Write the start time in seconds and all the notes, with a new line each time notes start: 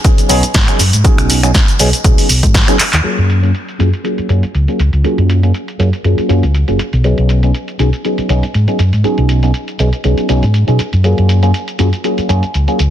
0.04 F#3 B3 C#4 D#4 G#4, kick, closed hi-hat, cabasa
0.18 muted fingered electric bass stroke, closed hi-hat, cabasa
0.29 B1 F#3 B3 C#4 D#4 G#4, open hi-hat, cabasa
0.43 muted fingered electric bass stroke, closed hi-hat, cabasa
0.54 G#2, kick, snare, closed hi-hat, cabasa
0.68 F#3 B3 C#4 D#4 G#4, finger snap, closed hi-hat, cabasa
0.79 F#2, open hi-hat, cabasa
0.93 G#2, closed hi-hat, cabasa
1.04 F#3 B3 C#4 D#4 G#4, muted fingered electric bass stroke, kick, closed hi-hat, cabasa
1.18 B1, finger snap, closed hi-hat, cabasa
1.30 open hi-hat, cabasa
1.43 F#3 B3 C#4 D#4 G#4, finger snap, closed hi-hat, cabasa
1.55 kick, snare, closed hi-hat, cabasa
1.68 closed hi-hat, cabasa
1.79 B1 F#3 B3 C#4 D#4 G#4, open hi-hat, cabasa
1.93 closed hi-hat, cabasa
2.04 B1 F#3 B3 C#4 D#4 G#4, kick, closed hi-hat, cabasa
2.18 muted fingered electric bass stroke, open hi-hat, cabasa
2.29 B1, open hi-hat, cabasa
2.43 G#2, kick, closed hi-hat, cabasa
2.54 kick, snare, closed hi-hat, cabasa
2.68 F#3 B3 C#4 D#4 G#4, finger snap, closed hi-hat, cabasa
2.80 muted fingered electric bass stroke, clap, open hi-hat, cabasa
2.93 D#2, clap, closed hi-hat, cabasa
3.04 F#3 A#3 C#4 F4 G#4, muted fingered electric bass stroke, closed hi-hat, crash, cabasa
3.18 F#2, closed hi-hat
3.30 closed hi-hat, cabasa
3.42 F#3 A#3 C#4 F4 G#4, closed hi-hat, cabasa
3.55 closed hi-hat, cabasa
3.68 closed hi-hat, cabasa
3.79 F#2 F#3 A#3 C#4 F4 G#4, closed hi-hat, cabasa
3.93 closed hi-hat, cabasa
4.04 F#3 A#3 C#4 F4 G#4, closed hi-hat, cabasa
4.18 muted fingered electric bass stroke, closed hi-hat, cabasa
4.29 F#2 F#3 A#3 C#4 F4 G#4, closed hi-hat, cabasa
4.43 muted fingered electric bass stroke, closed hi-hat, cabasa
4.55 C#2, closed hi-hat, cabasa
4.68 F#3 A#3 C#4 F4 G#4, closed hi-hat, cabasa
4.79 C#2, closed hi-hat, cabasa
4.93 C#2, closed hi-hat, cabasa
5.04 F#3 A#3 C#4 F4 G#4, muted fingered electric bass stroke, closed hi-hat, cabasa
5.18 F#2, closed hi-hat
5.30 closed hi-hat, cabasa
5.43 F#3 A#3 C#4 F4 G#4, closed hi-hat, cabasa
5.54 closed hi-hat, cabasa
5.68 closed hi-hat, cabasa
5.79 F#2 F#3 A#3 C#4 F4 G#4, closed hi-hat, cabasa
5.93 closed hi-hat, cabasa
6.04 F#2 F#3 A#3 C#4 F4 G#4, closed hi-hat, cabasa
6.18 muted fingered electric bass stroke, closed hi-hat, cabasa
6.29 F#2 F#3 A#3 C#4 F4 G#4, closed hi-hat, cabasa
6.43 C#2, closed hi-hat, cabasa
6.55 closed hi-hat, cabasa
6.68 F#1 F#3 A#3 C#4 F4 G#4, closed hi-hat, cabasa
6.79 muted fingered electric bass stroke, closed hi-hat, cabasa
6.93 B1, closed hi-hat, cabasa
7.04 F#3 B3 C#4 D#4 G#4, closed hi-hat, cabasa
7.18 B1, closed hi-hat
7.29 closed hi-hat, cabasa
7.43 F#3 B3 C#4 D#4 G#4, closed hi-hat, cabasa
7.54 closed hi-hat, cabasa
7.68 closed hi-hat, cabasa
7.79 B1 F#3 B3 C#4 D#4 G#4, closed hi-hat, cabasa
7.93 closed hi-hat, cabasa
8.05 F#3 B3 C#4 D#4 G#4, closed hi-hat, cabasa
8.18 muted fingered electric bass stroke, closed hi-hat, cabasa
8.29 B1 F#3 B3 C#4 D#4 G#4, closed hi-hat, cabasa
8.43 muted fingered electric bass stroke, closed hi-hat, cabasa
8.54 G#2, closed hi-hat, cabasa
8.68 F#3 B3 C#4 D#4 G#4, closed hi-hat, cabasa
8.79 F#2, closed hi-hat, cabasa
8.93 G#2, closed hi-hat, cabasa
9.04 F#3 B3 C#4 D#4 G#4, muted fingered electric bass stroke, closed hi-hat, cabasa
9.18 B1, closed hi-hat
9.29 closed hi-hat, cabasa
9.43 F#3 B3 C#4 D#4 G#4, closed hi-hat, cabasa
9.54 closed hi-hat, cabasa
9.68 closed hi-hat, cabasa
9.79 B1 F#3 B3 C#4 D#4 G#4, closed hi-hat, cabasa
9.93 closed hi-hat, cabasa
10.04 B1 F#3 B3 C#4 D#4 G#4, closed hi-hat, cabasa
10.18 muted fingered electric bass stroke, closed hi-hat, cabasa
10.29 B1 F#3 B3 C#4 D#4 G#4, closed hi-hat, cabasa
10.43 G#2, closed hi-hat, cabasa
10.54 closed hi-hat, cabasa
10.67 B2 F#3 B3 C#4 D#4 G#4, closed hi-hat, cabasa
10.79 muted fingered electric bass stroke, closed hi-hat, cabasa
10.93 F#2, closed hi-hat, cabasa
11.04 F#3 A#3 C#4 F4 G#4, closed hi-hat, cabasa
11.18 F#2, closed hi-hat
11.29 closed hi-hat, cabasa
11.43 F#3 A#3 C#4 F4 G#4, closed hi-hat, cabasa
11.54 closed hi-hat, cabasa
11.68 closed hi-hat, cabasa
11.79 F#2 F#3 A#3 C#4 F4 G#4, closed hi-hat, cabasa
11.93 closed hi-hat, cabasa
12.04 F#3 A#3 C#4 F4 G#4, closed hi-hat, cabasa
12.18 muted fingered electric bass stroke, closed hi-hat, cabasa
12.29 F#2 F#3 A#3 C#4 F4 G#4, closed hi-hat, cabasa
12.43 muted fingered electric bass stroke, closed hi-hat, cabasa
12.54 C#2, closed hi-hat, cabasa
12.67 F#3 A#3 C#4 F4 G#4, closed hi-hat, cabasa
12.79 C#2, closed hi-hat, cabasa